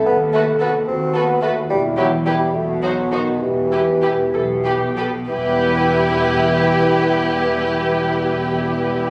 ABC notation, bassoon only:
X:1
M:6/8
L:1/8
Q:3/8=64
K:Em
V:1 name="Bassoon" clef=bass
B, A, B, C B, A, | G, F, G, A, F, ^D, | E,4- E, z | E,6- |
E,6 |]